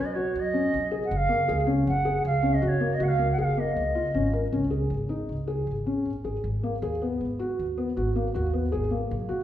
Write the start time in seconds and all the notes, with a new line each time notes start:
Already playing: B1
0.05 D#5
0.14 F#4 C#5
0.36 F#2 D#5
0.53 C#4
0.74 B1
0.91 G#4
1.05 F#5
1.11 F#1 F#5
1.16 F5
1.29 A#3
1.48 C#2 G#4
1.67 C#4
1.87 F#1 F#5
2.05 G#4
2.25 C#2 F5
2.43 C#4
2.54 D#5
2.62 F#1 F#4 D#5
2.67 C#5
2.80 A#3
2.93 D#5
3.00 C#2 F#4 F#5
3.08 F5
3.19 A#3
3.32 F#5
3.38 F#1 G#4 F#5
3.44 F5
3.57 A#3 D#5
3.76 C#2
3.95 F4
4.14 G#1 C#4
4.33 A#4
4.52 C#2 C#4
4.70 G#4
4.90 G#1
5.09 D#4
5.29 C#2
5.47 G#4
5.67 G#1
5.86 C#4
6.05 A#1
6.24 G#1 G#4
6.44 G#1
6.63 A#3
6.82 D#2 G#4
7.02 B3
7.21 G#1
7.39 F#4
7.59 D#2
7.77 B3
7.97 G#1 F#4
8.16 A#3
8.34 D#2 F#4
8.53 B3
8.72 G#1 G#4
8.91 A#3
9.11 B1
9.29 F#4